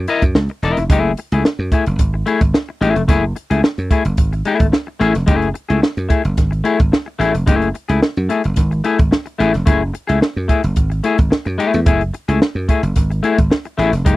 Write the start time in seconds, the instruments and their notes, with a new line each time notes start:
0.08 clean electric guitar E4 A#4 D#5, closed hi-hat
0.22 slap bass F#2, muted clean electric guitar stroke, kick, closed hi-hat
0.35 slap bass C#2, muted clean electric guitar stroke, snare
0.49 muted clean electric guitar stroke, closed hi-hat
0.62 slap bass E1, clean electric guitar E4 A#4 D#5, closed hi-hat
0.77 slap bass F1, muted clean electric guitar stroke, snare, closed hi-hat
0.90 slap bass F#1, clean electric guitar A3 E4 G#4, kick, closed hi-hat
1.17 muted clean electric guitar stroke, closed hi-hat
1.32 slap bass C#2, clean electric guitar A3 E4 G#4, closed hi-hat
1.45 muted clean electric guitar stroke, snare
1.59 slap bass F#2
1.72 clean electric guitar A3 E4 G#4, kick, closed hi-hat
1.86 slap bass F#1, closed hi-hat
1.99 slap bass G#1, kick, closed hi-hat
2.14 muted clean electric guitar stroke
2.26 clean electric guitar A3 E4 G#4, closed hi-hat
2.41 slap bass G#1, muted clean electric guitar stroke, kick, closed hi-hat
2.54 muted clean electric guitar stroke, snare
2.69 muted clean electric guitar stroke
2.81 slap bass A1, clean electric guitar A3 E4 G#4, closed hi-hat
2.96 slap bass F1, muted clean electric guitar stroke, closed hi-hat
3.08 slap bass F#1, clean electric guitar A3 E4 G#4, kick, closed hi-hat
3.36 muted clean electric guitar stroke, closed hi-hat
3.50 slap bass C#2, clean electric guitar A3 E4 G#4, closed hi-hat
3.62 muted clean electric guitar stroke, muted slap bass stroke, snare
3.78 slap bass F#2, closed hi-hat
3.91 clean electric guitar A3 E4 G#4, kick, closed hi-hat
4.05 slap bass F#1, closed hi-hat
4.17 slap bass G#1, kick, closed hi-hat
4.33 muted clean electric guitar stroke, closed hi-hat
4.45 clean electric guitar A3 E4 G#4, closed hi-hat
4.59 slap bass G#1, muted clean electric guitar stroke, kick, closed hi-hat
4.72 muted clean electric guitar stroke, snare
4.87 muted clean electric guitar stroke
5.00 slap bass A1, clean electric guitar A3 E4 G#4, closed hi-hat
5.14 slap bass F1, muted clean electric guitar stroke, snare, closed hi-hat
5.27 slap bass F#1, clean electric guitar A3 E4 G#4, kick, closed hi-hat
5.42 closed hi-hat
5.54 muted clean electric guitar stroke, closed hi-hat
5.69 slap bass C#2, clean electric guitar A3 E4 G#4, closed hi-hat
5.82 muted clean electric guitar stroke, muted slap bass stroke, snare
5.97 slap bass F#2, closed hi-hat
6.09 clean electric guitar A3 E4 G#4, kick, closed hi-hat
6.25 slap bass F#1, closed hi-hat
6.37 slap bass G#1, kick, snare, closed hi-hat
6.51 muted clean electric guitar stroke, closed hi-hat
6.64 clean electric guitar A3 E4 G#4, closed hi-hat
6.79 slap bass G#1, muted clean electric guitar stroke, kick, closed hi-hat
6.92 muted clean electric guitar stroke, snare
7.06 muted clean electric guitar stroke
7.19 slap bass A1, clean electric guitar A3 E4 G#4, closed hi-hat
7.34 slap bass F1, muted clean electric guitar stroke, closed hi-hat
7.47 slap bass F#1, clean electric guitar A3 E4 G#4, kick, closed hi-hat
7.62 closed hi-hat
7.74 muted clean electric guitar stroke, closed hi-hat
7.89 slap bass C#2, clean electric guitar A3 E4 G#4, closed hi-hat
8.02 snare
8.17 slap bass F#2, closed hi-hat
8.29 clean electric guitar A3 E4 G#4, closed hi-hat
8.44 slap bass F#1, closed hi-hat
8.56 slap bass G#1, kick, snare, closed hi-hat
8.71 muted clean electric guitar stroke, closed hi-hat
8.84 clean electric guitar A3 E4 G#4, closed hi-hat
8.99 slap bass G#1, muted clean electric guitar stroke, kick, closed hi-hat
9.11 muted clean electric guitar stroke, snare
9.26 muted clean electric guitar stroke, closed hi-hat
9.39 slap bass A1, clean electric guitar A3 E4 G#4, closed hi-hat
9.53 slap bass F1, muted clean electric guitar stroke, snare, closed hi-hat
9.66 slap bass F#1, clean electric guitar A3 E4 G#4, kick, closed hi-hat
9.94 muted clean electric guitar stroke, closed hi-hat
10.07 slap bass C#2, clean electric guitar A3 E4 G#4, closed hi-hat
10.21 muted clean electric guitar stroke, snare
10.36 slap bass F#2
10.48 clean electric guitar A3 E4 G#4, kick, closed hi-hat
10.63 slap bass F#1, muted clean electric guitar stroke, closed hi-hat
10.76 slap bass G#1, kick, closed hi-hat
10.90 muted clean electric guitar stroke, closed hi-hat
11.04 clean electric guitar A3 E4 G#4, closed hi-hat
11.18 slap bass G#1, muted clean electric guitar stroke, kick, closed hi-hat
11.31 muted clean electric guitar stroke, muted slap bass stroke, snare
11.45 slap bass F#2, muted clean electric guitar stroke, closed hi-hat
11.58 clean electric guitar A3 E4 G#4, closed hi-hat
11.73 slap bass E2, muted clean electric guitar stroke, snare, closed hi-hat
11.86 slap bass F#1, clean electric guitar A3 E4 G#4, kick, closed hi-hat
12.01 closed hi-hat
12.14 muted clean electric guitar stroke, closed hi-hat
12.28 slap bass C#2, clean electric guitar A3 E4 G#4, closed hi-hat
12.41 muted slap bass stroke, muted clean electric guitar stroke, snare
12.55 slap bass F#2
12.69 clean electric guitar A3 E4 G#4, kick, closed hi-hat
12.83 slap bass F#1, muted clean electric guitar stroke, closed hi-hat
12.96 slap bass G#1, kick, snare, closed hi-hat
13.11 muted clean electric guitar stroke, closed hi-hat
13.23 clean electric guitar A3 E4 G#4, closed hi-hat
13.38 slap bass G#1, muted clean electric guitar stroke, kick, closed hi-hat
13.51 muted clean electric guitar stroke, snare
13.65 muted clean electric guitar stroke, closed hi-hat
13.78 slap bass A1, clean electric guitar A3 E4 G#4, closed hi-hat
13.92 slap bass F1, muted clean electric guitar stroke, snare, closed hi-hat
14.05 slap bass F#1, clean electric guitar A3 E4 G#4, kick, closed hi-hat